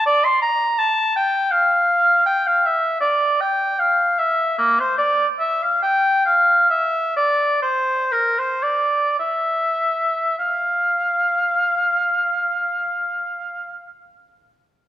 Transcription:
0.06 D5
0.25 C6
0.42 A#5
0.78 A5
1.16 G5
1.51 F5
2.26 G5
2.47 F5
2.66 E5
3.01 D5
3.41 G5
3.79 F5
4.19 E5
4.58 A#3
4.80 C5
4.98 D5
5.40 E5
5.62 F5
5.83 G5
6.25 F5
6.70 E5
7.16 D5
7.62 C5
8.12 A#4
8.39 C5
8.63 D5
9.19 E5
10.39 F5

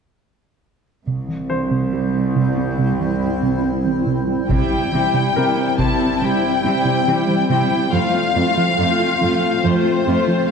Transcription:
1.07 C2 C3 G3 C4 E4 C5
1.29 E3
1.50 E3 C5
1.71 C3
1.93 G3
2.36 C3
2.57 C4
2.79 C3
3.00 E3
3.43 C3
3.64 C4
3.85 E3
4.07 C3
4.28 G3
4.49 C3 G3 C4 E4 C5 G5, taiko
4.71 G3
4.92 C3 E3 G3 E4
5.14 C3
5.36 C3 G3 E4 A#4
5.57 C4
5.78 C3 G3 E4 A5, taiko
6.21 C3 G3 E4 G5
6.43 C4
6.64 C3 G3 C4 E4
6.85 C3
7.07 C3 E3 G3 E4
7.28 E3
7.49 C3 G3 E4 G5
7.71 G3
7.92 F2 F3 A3 C4 F4 C5 F5
8.14 C4
8.34 F2 A3 F4
8.57 F3
8.78 F2 A3 F4
9.00 F4
9.21 F2 F3 A3 F4
9.63 F2 F3 A3 F4 C5
9.85 F4
10.06 F2 A3 F4
10.28 F3

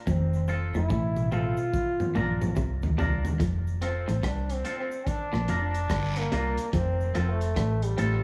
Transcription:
0.07 F1 F2 C4, kick, high tom, cabasa
0.33 cabasa
0.48 C4 F4 A4, cabasa
0.74 F1 F2 E4, cabasa
0.90 A1 A2, kick, mid tom, cabasa
1.16 mid tom, cabasa
1.32 C4 F4 A4, mid tom, cabasa
1.57 cabasa
1.73 kick, cabasa
2.00 mid tom, cabasa
2.15 A#1 A#2 D4 F4 A#4, mid tom, cabasa
2.41 mid tom, cabasa
2.56 C2 C3, kick, cabasa
2.82 floor tom, cabasa
2.98 C2 C3 D4 F4 A#4, floor tom, cabasa
3.25 floor tom, cabasa
3.40 F1 F2, kick, closed hi-hat, cabasa
3.67 cabasa
3.81 C4 F4 A4, closed hi-hat, cabasa
4.08 A1 A2, closed hi-hat, cabasa
4.23 C2 C3 D4, kick, cross-stick, closed hi-hat, cabasa
4.50 C4, closed hi-hat, cabasa
4.65 C4 F4 A4, closed hi-hat, cabasa
4.80 C4
4.91 cabasa
5.07 D4, kick, closed hi-hat, cabasa
5.33 A#1 A#2, cross-stick, cabasa
5.48 F1 F2 D4 F4 A#4, closed hi-hat, cabasa
5.62 D4
5.74 closed hi-hat, cabasa
5.90 G1 G2, kick, cross-stick, closed hi-hat, cabasa, long guiro
6.16 A#3, muted clean electric guitar stroke, closed hi-hat, cabasa
6.32 C2 C3 D4 F4 A#4, closed hi-hat, cabasa
6.57 closed hi-hat, cabasa
6.73 F1 F2 C4, kick, closed hi-hat, cabasa
7.00 cabasa
7.14 F1 F2 C4 F4 A4, closed hi-hat, cabasa
7.29 A3
7.41 closed hi-hat, cabasa
7.56 A1 A2, kick, cross-stick, closed hi-hat, cabasa
7.82 G3, closed hi-hat, cabasa
7.98 A1 A2 C4 F4 A4, closed hi-hat, cabasa

